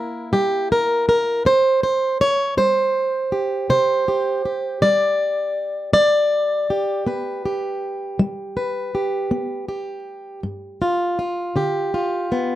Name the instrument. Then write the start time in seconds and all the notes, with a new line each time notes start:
steel-string acoustic guitar
Already playing: A#3 E4 A#4
0.33 G3 G4
0.72 A#4
1.09 A#4
1.45 C3 C5
1.83 C5
2.21 C#5
2.57 G3 C5
3.32 G4
3.70 C3 C5
4.08 G4
4.45 G4
4.82 G3 D5
5.93 G3 D5
6.70 G4
7.07 B3 B4
7.46 G4
8.19 G3
8.57 B4
8.95 G4
9.31 B3
9.69 G4
10.43 G2
10.82 F4
11.19 F4
11.56 D3 G4
11.94 F4
12.32 B3